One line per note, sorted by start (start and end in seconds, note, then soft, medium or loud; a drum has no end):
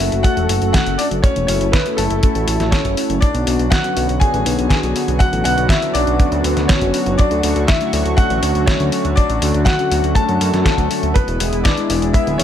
0.00 0.11 F#1 medium
0.00 0.22 A3 medium
0.00 3.18 A3 medium
0.00 0.22 C#4 medium
0.00 0.21 E4 medium
0.00 0.22 F#4 medium
0.00 1.22 F#4 medium
0.00 0.22 A4 medium
0.00 0.25 E5 medium
0.12 0.23 F#1 medium
0.12 closed hi-hat soft
0.23 0.59 A3 medium
0.23 0.59 C#4 medium
0.23 0.59 F#4 medium
0.23 0.71 F#4 medium
0.23 0.59 A4 loud
0.23 0.71 F#5 loud
0.23 kick loud
0.23 closed hi-hat medium
0.37 0.48 E1 medium
0.37 closed hi-hat soft
0.49 0.60 F#1 medium
0.49 open hi-hat loud
0.62 0.73 F#1 medium
0.62 0.96 A3 medium
0.62 0.96 C#4 medium
0.62 0.96 F#4 medium
0.62 0.96 A4 loud
0.62 closed hi-hat soft
0.73 0.98 F#4 medium
0.73 0.99 F#5 loud
0.73 kick loud
0.73 snare loud
0.73 closed hi-hat medium
0.86 0.98 F#1 medium
0.86 closed hi-hat soft
0.98 1.16 A3 medium
0.98 1.17 C#4 medium
0.98 1.06 D4 medium
0.98 1.16 F#4 medium
0.98 1.16 A4 medium
0.98 1.04 D5 medium
0.98 open hi-hat medium
1.11 1.22 F#1 medium
1.11 closed hi-hat soft
1.22 1.47 C#4 medium
1.22 3.20 E4 medium
1.22 1.45 C#5 loud
1.22 kick loud
1.22 closed hi-hat medium
1.36 1.47 E1 medium
1.36 closed hi-hat soft
1.47 1.60 F#1 medium
1.47 1.66 A3 medium
1.47 1.66 C#4 medium
1.47 1.72 C#4 medium
1.47 1.66 F#4 medium
1.47 1.66 A4 medium
1.47 1.71 C#5 medium
1.47 open hi-hat loud
1.61 1.72 F#1 medium
1.61 closed hi-hat soft
1.72 1.97 B3 medium
1.72 1.98 B4 medium
1.72 kick loud
1.72 snare loud
1.72 closed hi-hat medium
1.86 2.20 A3 medium
1.86 2.20 C#4 medium
1.86 2.20 F#4 medium
1.86 2.20 A4 medium
1.86 closed hi-hat soft
1.97 2.09 F#1 medium
1.97 2.69 A3 medium
1.97 2.74 A4 loud
1.97 open hi-hat medium
2.10 2.21 F#1 medium
2.10 closed hi-hat soft
2.23 2.57 A3 medium
2.23 2.57 C#4 medium
2.23 2.57 F#4 medium
2.23 2.57 A4 loud
2.23 kick loud
2.23 closed hi-hat medium
2.35 2.46 A1 medium
2.35 closed hi-hat soft
2.48 2.59 A1 medium
2.48 open hi-hat loud
2.60 2.71 A1 medium
2.60 2.94 A3 medium
2.60 2.94 C#4 medium
2.60 2.94 F#4 medium
2.60 2.94 A4 loud
2.60 snare soft
2.60 closed hi-hat soft
2.71 3.19 C#4 medium
2.71 3.23 C#5 medium
2.71 kick loud
2.71 snare loud
2.71 closed hi-hat medium
2.85 2.96 F#1 medium
2.85 kick medium
2.85 closed hi-hat soft
2.97 3.15 A3 medium
2.97 3.15 C#4 medium
2.97 3.15 F#4 medium
2.97 3.15 A4 medium
2.97 open hi-hat medium
3.10 3.21 F#1 medium
3.10 closed hi-hat soft
3.21 7.15 D3 medium
3.21 11.11 F#3 medium
3.21 7.15 B3 medium
3.21 3.69 D4 medium
3.21 11.11 F#4 medium
3.21 3.72 D5 loud
3.21 kick loud
3.21 closed hi-hat medium
3.35 3.45 B1 medium
3.35 closed hi-hat soft
3.47 3.58 B1 medium
3.47 3.64 B3 medium
3.47 3.64 C#4 medium
3.47 3.64 D4 medium
3.47 3.64 F#4 medium
3.47 open hi-hat loud
3.59 3.70 B1 medium
3.59 closed hi-hat soft
3.70 4.18 F#4 medium
3.70 4.17 F#5 loud
3.70 kick loud
3.70 snare loud
3.70 closed hi-hat medium
3.84 4.18 B3 medium
3.84 4.18 C#4 medium
3.84 4.18 D4 medium
3.84 4.18 F#4 medium
3.84 closed hi-hat soft
3.97 4.08 B1 medium
3.97 open hi-hat medium
4.09 4.20 B1 medium
4.09 closed hi-hat soft
4.20 4.55 B3 medium
4.20 4.55 C#4 medium
4.20 4.55 D4 medium
4.20 4.56 F#4 loud
4.20 4.68 G#4 medium
4.20 4.67 G#5 loud
4.20 kick loud
4.20 closed hi-hat medium
4.34 4.45 A1 medium
4.34 closed hi-hat soft
4.46 4.57 B1 medium
4.46 open hi-hat loud
4.58 4.69 B1 medium
4.58 4.93 B3 medium
4.58 4.93 C#4 medium
4.58 4.93 D4 medium
4.58 4.93 F#4 loud
4.58 closed hi-hat soft
4.69 5.17 G#4 medium
4.69 5.21 G#5 loud
4.69 kick loud
4.69 snare loud
4.69 closed hi-hat medium
4.83 4.94 B1 medium
4.83 closed hi-hat soft
4.96 5.13 B3 medium
4.96 5.13 C#4 medium
4.96 5.13 D4 medium
4.96 5.13 F#4 medium
4.96 open hi-hat medium
5.08 5.19 B1 medium
5.08 closed hi-hat soft
5.19 5.44 F#4 medium
5.19 5.42 F#5 loud
5.19 kick loud
5.19 closed hi-hat medium
5.33 5.44 A1 medium
5.33 closed hi-hat soft
5.44 5.56 B1 medium
5.44 5.63 B3 medium
5.44 5.63 C#4 medium
5.44 5.63 D4 medium
5.44 5.63 F#4 medium
5.44 5.69 F#4 medium
5.44 5.68 F#5 loud
5.44 open hi-hat loud
5.58 5.69 B1 medium
5.58 closed hi-hat soft
5.68 5.93 E4 medium
5.68 5.95 E5 loud
5.68 kick loud
5.68 snare loud
5.68 closed hi-hat medium
5.82 6.17 B3 medium
5.82 6.17 C#4 medium
5.82 6.17 D4 medium
5.82 6.17 F#4 medium
5.82 closed hi-hat soft
5.94 6.06 B1 medium
5.94 6.66 D4 medium
5.94 6.65 D5 loud
5.94 open hi-hat medium
6.07 6.18 B1 medium
6.07 closed hi-hat soft
6.20 6.42 B3 medium
6.20 6.42 C#4 medium
6.20 6.42 D4 medium
6.20 6.42 F#4 loud
6.20 kick loud
6.20 closed hi-hat medium
6.32 6.43 D2 medium
6.32 closed hi-hat soft
6.44 6.55 D2 medium
6.44 6.79 B3 medium
6.44 6.79 C#4 medium
6.44 6.79 D4 medium
6.44 6.79 F#4 loud
6.44 open hi-hat medium
6.57 6.68 D2 medium
6.57 snare soft
6.57 closed hi-hat soft
6.68 7.16 C#4 medium
6.68 7.20 C#5 loud
6.68 kick loud
6.68 snare loud
6.68 closed hi-hat medium
6.81 6.93 F#1 medium
6.81 6.91 B3 medium
6.81 6.91 C#4 medium
6.81 6.91 D4 medium
6.81 6.91 F#4 loud
6.81 kick medium
6.81 closed hi-hat soft
6.94 7.17 B3 medium
6.94 7.17 C#4 medium
6.94 7.17 D4 medium
6.94 7.17 F#4 medium
6.94 open hi-hat medium
7.06 7.17 F#1 medium
7.06 closed hi-hat soft
7.18 11.12 D3 medium
7.18 11.12 A3 medium
7.18 7.65 D4 medium
7.18 7.64 D5 loud
7.18 9.15 C#6 medium
7.18 kick loud
7.18 closed hi-hat medium
7.31 7.42 D2 medium
7.31 closed hi-hat soft
7.43 7.55 D2 medium
7.43 7.61 A3 medium
7.43 7.61 C#4 medium
7.43 7.61 D4 medium
7.43 7.61 F#4 medium
7.43 open hi-hat loud
7.56 7.67 D2 medium
7.56 closed hi-hat soft
7.67 8.15 E4 medium
7.67 8.14 E5 loud
7.67 kick loud
7.67 snare loud
7.67 closed hi-hat medium
7.81 8.15 A3 medium
7.81 8.15 C#4 medium
7.81 8.15 D4 medium
7.81 8.15 F#4 medium
7.81 closed hi-hat soft
7.93 8.04 D2 medium
7.93 open hi-hat medium
8.06 8.17 D2 medium
8.06 closed hi-hat soft
8.17 8.52 A3 loud
8.17 8.52 C#4 medium
8.17 8.52 D4 medium
8.17 8.52 F#4 loud
8.17 8.65 F#4 medium
8.17 8.63 F#5 loud
8.17 kick loud
8.17 closed hi-hat medium
8.30 8.41 A1 medium
8.30 closed hi-hat soft
8.43 8.54 D2 loud
8.43 open hi-hat loud
8.55 8.66 D2 medium
8.55 8.89 A3 medium
8.55 8.89 C#4 medium
8.55 8.89 D4 medium
8.55 8.89 F#4 loud
8.55 closed hi-hat soft
8.66 9.14 C#4 medium
8.66 9.13 C#5 loud
8.66 kick loud
8.66 snare loud
8.66 closed hi-hat medium
8.80 8.91 D2 medium
8.80 closed hi-hat soft
8.92 9.10 A3 medium
8.92 9.10 C#4 medium
8.92 9.10 D4 medium
8.92 9.10 F#4 medium
8.92 open hi-hat medium
9.05 9.16 D2 medium
9.05 closed hi-hat soft
9.16 9.64 D4 medium
9.16 9.62 D5 loud
9.16 kick loud
9.16 closed hi-hat medium
9.30 9.40 A1 medium
9.30 closed hi-hat soft
9.42 9.53 D2 medium
9.42 9.60 A3 medium
9.42 9.60 C#4 medium
9.42 9.60 D4 medium
9.42 9.60 F#4 medium
9.42 open hi-hat loud
9.54 9.65 D2 medium
9.54 closed hi-hat soft
9.65 10.13 F#4 medium
9.65 10.12 F#5 loud
9.65 kick loud
9.65 snare loud
9.65 closed hi-hat medium
9.79 10.13 A3 medium
9.79 10.13 C#4 medium
9.79 10.13 D4 medium
9.79 10.13 F#4 medium
9.79 closed hi-hat soft
9.92 10.03 D2 medium
9.92 open hi-hat medium
10.04 10.15 D2 medium
10.04 closed hi-hat soft
10.15 10.51 A3 loud
10.15 10.51 C#4 medium
10.15 10.51 D4 medium
10.15 10.51 F#4 loud
10.15 10.63 A4 medium
10.15 10.67 A5 loud
10.15 kick loud
10.15 closed hi-hat medium
10.29 10.40 F#2 medium
10.29 closed hi-hat soft
10.41 10.52 F#2 loud
10.41 open hi-hat loud
10.54 10.65 F#2 medium
10.54 10.88 A3 medium
10.54 10.88 C#4 medium
10.54 10.88 D4 medium
10.54 10.88 F#4 loud
10.54 snare soft
10.54 closed hi-hat soft
10.65 11.13 A3 medium
10.65 11.11 A4 loud
10.65 kick loud
10.65 snare loud
10.65 closed hi-hat medium
10.78 10.89 D2 medium
10.78 kick medium
10.78 closed hi-hat soft
10.91 11.08 A3 medium
10.91 11.08 C#4 medium
10.91 11.08 D4 medium
10.91 11.08 F#4 medium
10.91 open hi-hat medium
11.03 11.14 D2 medium
11.03 closed hi-hat soft
11.14 12.44 G#3 medium
11.14 12.44 B3 medium
11.14 11.62 B3 medium
11.14 12.44 E4 medium
11.14 11.66 B4 loud
11.14 kick loud
11.14 closed hi-hat medium
11.28 11.39 E1 medium
11.28 closed hi-hat soft
11.40 11.51 E1 medium
11.40 11.58 G#3 medium
11.40 11.58 B3 medium
11.40 11.58 E4 medium
11.40 11.58 G#4 medium
11.40 open hi-hat loud
11.53 11.64 E1 medium
11.53 closed hi-hat soft
11.64 12.12 D4 medium
11.64 12.10 D5 loud
11.64 kick loud
11.64 snare loud
11.64 closed hi-hat medium
11.77 12.12 G#3 medium
11.77 12.12 B3 medium
11.77 12.12 E4 medium
11.77 12.12 G#4 medium
11.77 closed hi-hat soft
11.90 12.01 E1 medium
11.90 open hi-hat loud
12.02 12.13 E1 medium
12.02 closed hi-hat soft
12.13 12.44 G#3 loud
12.13 12.44 B3 medium
12.13 12.44 E4 medium
12.13 12.38 E4 medium
12.13 12.44 G#4 loud
12.13 12.37 E5 loud
12.13 kick loud
12.13 closed hi-hat medium
12.27 12.38 D1 medium
12.27 closed hi-hat soft
12.38 12.44 E1 loud
12.38 12.44 C#4 medium
12.38 12.44 C#5 loud
12.38 open hi-hat loud